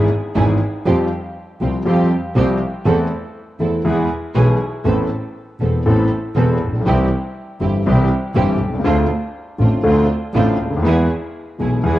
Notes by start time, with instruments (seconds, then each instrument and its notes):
0.35 double bass G#1, grand piano G#1 G#2 E3 G#3 B3 G#4, string section B3 E4 G#4
0.86 double bass F2, grand piano F2 F3 G3 C4 G4, string section C4 F4 G4
1.61 double bass C2, grand piano C2 C3 F3 G3 C4 G4, string section C4 F4 G4
1.85 grand piano F2 F3 G3 C4 G4, double bass F2, string section C4 F4 G4
2.35 double bass C2, grand piano C2 C3 F3 G3 C4 G4, string section C4 F4 G4
2.85 double bass E2, grand piano E2 E3 A3 C4 A4, string section C4 E4 A4
3.60 double bass E2, grand piano E2 E3 A3 C4 A4, string section C4 E4 A4
3.85 grand piano E2 E3 G#3 B3 G#4, double bass E2, string section B3 E4 G#4
4.34 grand piano B1 B2 E3 G#3 B3 G#4, double bass B1, string section B3 E4 G#4
4.84 grand piano A1 A2 E3 B3 C4 A4, double bass A1, string section B3 C4 A4
5.60 grand piano E1 E2 E3 B3 C4 A4, double bass E1, string section B3 C4 A4
5.85 double bass A1, grand piano A1 A2 E3 B3 C4 A4, string section B3 C4 A4
6.35 double bass E1, grand piano E1 E2 E3 B3 C4 A4, string section B3 C4 A4
6.61 double bass A#1
6.67 grand piano A1
6.73 grand piano A#1
6.80 grand piano B1
6.86 double bass C2, grand piano C2 C3 E3 G3 C4 G4, string section C4 E4 G4
7.60 grand piano G1 G2 E3 G3 C4 G4, double bass G1, string section C4 E4 G4
7.86 grand piano C2 C3 E3 G3 C4 G4, double bass C2, string section C4 E4 G4
8.35 double bass G1, grand piano G1 G2 E3 G3 C4 G4, string section C4 E4 G4
8.61 double bass C2
8.66 grand piano B1
8.73 grand piano C2
8.79 grand piano C#2
8.84 grand piano D2 D3 A3 C4 F4, double bass D2, string section C4 D4 F4
9.58 grand piano A1 A2 D3 A3 C4 F4, double bass A1, string section C4 D4 F4
9.83 grand piano D2 D3 A3 C4 F4, double bass D2, string section C4 D4 F4
10.34 double bass A1, grand piano A1 A2 D3 A3 C4 F4, string section C4 D4 F4
10.60 double bass D2
10.65 grand piano C#2
10.71 grand piano D2
10.77 grand piano D#2
10.82 grand piano E2 E3 G#3 B3 G#4, double bass E2, string section B3 E4 G#4
11.58 grand piano B1 B2 E3 G#3 B3 G#4, double bass B1, string section B3 E4 G#4
11.83 grand piano E2 E3 G#3 B3 G#4, double bass E2, string section B3 E4 G#4